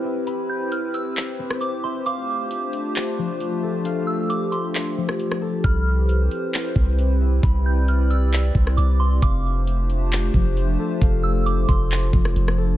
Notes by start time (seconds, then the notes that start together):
Already playing: C4 E4 G4 A4 B4 C5
0.04 E5
0.27 B5, closed hi-hat
0.49 G6
0.72 F6, closed hi-hat
0.94 E6, closed hi-hat
1.17 clap, closed hi-hat
1.39 C4
1.50 cross-stick
1.61 D6, closed hi-hat
1.84 E5 C6
2.06 A3 D4 F4 F5 D6, closed hi-hat
2.51 closed hi-hat
2.73 closed hi-hat
2.96 clap, closed hi-hat
3.18 F3
3.40 closed hi-hat
3.63 A4
3.85 F5, closed hi-hat
4.07 E6
4.30 D6, closed hi-hat
4.52 C6, closed hi-hat
4.75 clap, closed hi-hat
4.97 F3
5.09 cross-stick
5.20 closed hi-hat
5.32 cross-stick
5.42 A4
5.64 C2 C4 E4 B4 C5 B5 F6, kick, closed hi-hat
6.09 closed hi-hat
6.31 closed hi-hat
6.54 clap, closed hi-hat
6.76 C2 C4, kick
6.99 closed hi-hat
7.21 E5
7.43 C2 D5 B5, kick, closed hi-hat
7.66 G6
7.88 F6, closed hi-hat
8.10 E6, closed hi-hat
8.33 clap, closed hi-hat
8.55 C2 C4, kick
8.67 cross-stick
8.77 C2 D6, closed hi-hat
9.00 E5 C6
9.22 F1 A3 D4 F4 G4 C5 F5 D6, kick, closed hi-hat
9.67 closed hi-hat
9.90 closed hi-hat
10.12 clap, closed hi-hat
10.34 F1 F3, kick
10.57 closed hi-hat
10.79 A4
11.01 F1 F5, kick, closed hi-hat
11.23 E6
11.46 D6, closed hi-hat
11.68 F1 C6, kick, closed hi-hat
11.91 clap, closed hi-hat
12.13 F1 F3, kick
12.25 cross-stick
12.36 F1, closed hi-hat
12.48 cross-stick
12.58 A4